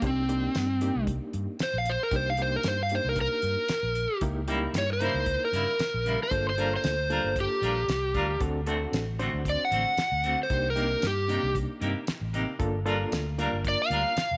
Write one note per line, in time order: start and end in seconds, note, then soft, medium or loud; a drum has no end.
0.02 0.47 C2 medium
0.02 0.22 A#3 medium
0.02 0.22 D4 medium
0.02 0.22 D#4 medium
0.02 0.22 G4 medium
0.02 kick loud
0.02 closed hi-hat medium
0.07 1.06 C4 loud
0.29 0.67 A#3 medium
0.29 0.67 D4 medium
0.29 0.67 D#4 medium
0.29 0.67 G4 medium
0.29 closed hi-hat medium
0.55 0.89 G2 medium
0.55 snare loud
0.55 closed hi-hat medium
0.55 tambourine loud
0.81 1.56 A#3 medium
0.81 1.56 D4 medium
0.81 1.56 D#4 medium
0.81 1.56 G4 medium
0.81 closed hi-hat medium
0.96 1.18 C2 medium
1.07 kick medium
1.07 closed hi-hat medium
1.33 1.46 G2 medium
1.33 closed hi-hat medium
1.59 1.75 C5 loud
1.59 muted fingered electric bass stroke soft
1.59 snare loud
1.59 closed hi-hat medium
1.59 tambourine loud
1.74 1.96 A#1 medium
1.78 1.88 F5 loud
1.85 closed hi-hat medium
1.90 2.02 C5 medium
2.03 2.13 A#4 medium
2.11 2.56 C2 loud
2.11 2.32 A#3 medium
2.11 2.32 D4 medium
2.11 2.32 D#4 medium
2.11 2.32 G4 medium
2.11 kick medium
2.11 closed hi-hat medium
2.16 2.28 C5 medium
2.30 2.40 F5 medium
2.37 2.76 A#3 medium
2.37 2.76 D4 medium
2.37 2.76 D#4 medium
2.37 2.76 G4 medium
2.37 closed hi-hat medium
2.42 2.54 C5 medium
2.56 2.66 A#4 medium
2.63 2.98 G2 medium
2.63 snare loud
2.63 closed hi-hat medium
2.63 tambourine loud
2.68 2.80 C5 loud
2.83 2.92 F5 loud
2.89 3.66 A#3 medium
2.89 3.66 D4 medium
2.89 3.65 D#4 medium
2.89 3.65 G4 medium
2.89 closed hi-hat medium
2.95 3.07 C5 medium
3.05 3.27 C2 medium
3.09 3.19 A#4 medium
3.16 kick medium
3.16 closed hi-hat medium
3.21 4.21 A#4 loud
3.42 3.55 G2 medium
3.42 closed hi-hat medium
3.68 muted fingered electric bass stroke soft
3.68 snare loud
3.68 closed hi-hat medium
3.68 tambourine loud
3.83 4.05 A#1 medium
3.95 closed hi-hat medium
4.21 4.66 C#2 medium
4.21 4.41 A#3 medium
4.21 4.41 D#4 medium
4.21 4.41 E4 medium
4.21 4.41 G4 medium
4.21 kick loud
4.21 closed hi-hat medium
4.48 4.64 C#3 medium
4.48 4.65 G3 medium
4.48 4.86 A#3 medium
4.48 4.65 A#3 medium
4.48 4.86 D#4 medium
4.48 4.86 E4 medium
4.48 4.66 E4 medium
4.48 4.86 G4 loud
4.48 closed hi-hat medium
4.74 5.08 G2 medium
4.74 snare loud
4.74 closed hi-hat medium
4.74 tambourine loud
4.78 4.90 C#5 medium
4.93 5.41 C5 loud
5.00 5.17 C#3 medium
5.00 5.17 G3 medium
5.00 5.74 A#3 medium
5.00 5.18 A#3 medium
5.00 5.75 D#4 medium
5.00 5.75 E4 medium
5.00 5.18 E4 medium
5.00 5.74 A#4 medium
5.00 closed hi-hat medium
5.14 5.36 C#2 medium
5.26 kick medium
5.26 closed hi-hat medium
5.45 6.19 A#4 medium
5.53 5.65 G2 medium
5.53 5.69 C#3 medium
5.53 5.70 G3 medium
5.53 5.70 A#3 medium
5.53 5.70 E4 medium
5.53 closed hi-hat medium
5.79 muted fingered electric bass stroke soft
5.79 snare loud
5.79 closed hi-hat medium
5.79 tambourine loud
5.94 6.16 A#1 medium
6.05 6.22 C#3 medium
6.05 6.22 G3 medium
6.05 6.23 A#3 medium
6.05 6.23 E4 medium
6.05 closed hi-hat medium
6.23 6.47 C5 medium
6.31 6.75 G1 medium
6.31 6.50 A#3 medium
6.31 6.50 D4 medium
6.31 6.50 F4 medium
6.31 6.50 A4 medium
6.31 kick loud
6.31 closed hi-hat medium
6.50 6.73 C5 loud
6.58 6.74 G3 medium
6.58 6.96 A#3 medium
6.58 6.96 D4 medium
6.58 6.74 D4 medium
6.58 6.96 F4 medium
6.58 6.75 F4 medium
6.58 6.96 A4 medium
6.58 6.75 A#4 medium
6.58 closed hi-hat medium
6.76 7.36 C5 medium
6.84 7.18 D2 medium
6.84 snare loud
6.84 closed hi-hat medium
6.84 tambourine loud
7.10 7.26 G3 medium
7.10 7.84 A#3 medium
7.10 7.84 D4 medium
7.10 7.27 D4 medium
7.10 7.84 F4 medium
7.10 7.27 F4 medium
7.10 7.84 A4 medium
7.10 7.28 A#4 medium
7.10 closed hi-hat medium
7.24 7.46 G1 medium
7.36 kick medium
7.36 closed hi-hat medium
7.40 8.40 G4 loud
7.62 7.85 A#1 medium
7.62 7.79 G3 medium
7.62 7.79 D4 medium
7.62 7.80 F4 medium
7.62 7.80 A#4 medium
7.62 closed hi-hat medium
7.88 8.12 C2 medium
7.88 snare loud
7.88 closed hi-hat medium
7.88 tambourine loud
8.14 8.38 D2 medium
8.14 8.31 G3 medium
8.14 8.31 D4 medium
8.14 8.32 F4 medium
8.14 8.32 A#4 medium
8.14 kick medium
8.14 closed hi-hat medium
8.40 8.85 D2 medium
8.40 8.60 C4 medium
8.40 8.60 D4 medium
8.40 8.60 F#4 medium
8.40 8.60 A4 medium
8.40 kick loud
8.40 closed hi-hat medium
8.66 8.83 D3 medium
8.66 8.84 A3 medium
8.66 9.05 C4 medium
8.66 8.84 C4 medium
8.66 9.05 D4 medium
8.66 9.05 F#4 medium
8.66 8.85 F#4 medium
8.66 9.05 A4 loud
8.66 closed hi-hat medium
8.92 9.27 A1 medium
8.92 snare loud
8.92 closed hi-hat medium
8.92 tambourine loud
9.19 9.36 D3 medium
9.19 9.36 A3 medium
9.19 9.93 C4 medium
9.19 9.36 C4 medium
9.19 9.93 D4 medium
9.19 9.94 F#4 medium
9.19 9.37 F#4 loud
9.19 9.94 C5 medium
9.19 closed hi-hat medium
9.33 9.55 D2 medium
9.45 kick medium
9.45 closed hi-hat medium
9.49 9.61 D5 loud
9.65 10.38 F#5 loud
9.71 9.83 A1 medium
9.71 9.88 D3 medium
9.71 9.88 A3 medium
9.71 9.89 C4 medium
9.71 9.89 F#4 medium
9.71 closed hi-hat medium
9.97 muted fingered electric bass stroke soft
9.97 snare loud
9.97 closed hi-hat medium
9.97 tambourine loud
10.12 10.34 D2 medium
10.23 10.40 D3 medium
10.23 10.41 A3 medium
10.23 10.41 C4 medium
10.23 10.42 F#4 medium
10.23 closed hi-hat medium
10.43 10.66 C5 medium
10.50 10.94 C2 medium
10.50 10.69 A#3 medium
10.50 10.69 D4 medium
10.50 10.69 D#4 medium
10.50 10.69 G4 medium
10.50 kick loud
10.50 closed hi-hat medium
10.70 11.04 A#4 medium
10.76 10.93 C3 medium
10.76 11.14 A#3 medium
10.76 10.93 A#3 medium
10.76 11.14 D4 medium
10.76 11.14 D#4 medium
10.76 10.94 D#4 medium
10.76 11.14 G4 medium
10.76 10.94 G4 medium
10.76 closed hi-hat medium
11.02 11.37 G2 medium
11.02 snare loud
11.02 closed hi-hat medium
11.02 tambourine loud
11.07 11.55 G4 loud
11.28 11.45 C3 medium
11.28 12.03 A#3 medium
11.28 11.46 A#3 medium
11.28 12.03 D4 medium
11.28 12.03 D#4 medium
11.28 11.46 D#4 medium
11.28 12.03 G4 medium
11.28 11.46 G4 medium
11.28 closed hi-hat medium
11.43 11.65 C2 medium
11.55 kick medium
11.55 closed hi-hat medium
11.80 11.93 G2 medium
11.80 11.97 C3 medium
11.80 11.98 A#3 medium
11.80 11.98 D#4 medium
11.80 11.99 G4 medium
11.80 closed hi-hat medium
12.07 muted fingered electric bass stroke soft
12.07 snare loud
12.07 closed hi-hat medium
12.07 tambourine loud
12.21 12.43 A1 medium
12.33 12.50 C3 medium
12.33 12.50 A#3 medium
12.33 12.51 D#4 medium
12.33 12.51 G4 loud
12.33 closed hi-hat medium
12.59 13.04 G1 loud
12.59 12.79 A#3 medium
12.59 12.79 D4 medium
12.59 12.79 F4 medium
12.59 12.79 A4 loud
12.59 kick loud
12.59 closed hi-hat medium
12.85 13.03 G3 medium
12.85 13.24 A#3 medium
12.85 13.24 D4 medium
12.85 13.03 D4 medium
12.85 13.24 F4 medium
12.85 13.03 F4 medium
12.85 13.24 A4 loud
12.85 13.04 A#4 medium
12.85 closed hi-hat medium
13.12 13.46 D2 medium
13.12 snare loud
13.12 closed hi-hat medium
13.12 tambourine loud
13.38 13.55 G3 medium
13.38 14.13 A#3 medium
13.38 14.13 D4 medium
13.38 13.55 D4 medium
13.38 14.13 F4 medium
13.38 13.56 F4 medium
13.38 14.13 A#4 medium
13.38 13.56 A#4 medium
13.38 closed hi-hat medium
13.53 13.75 G1 medium
13.65 13.80 D5 loud
13.65 kick medium
13.65 closed hi-hat medium
13.82 14.37 F5 loud
13.90 14.02 D2 medium
13.90 14.07 G3 medium
13.90 14.08 D4 medium
13.90 14.08 F4 medium
13.90 14.09 A#4 medium
13.90 closed hi-hat medium
14.16 muted fingered electric bass stroke soft
14.16 snare loud
14.16 closed hi-hat medium
14.16 tambourine loud
14.31 14.37 F1 medium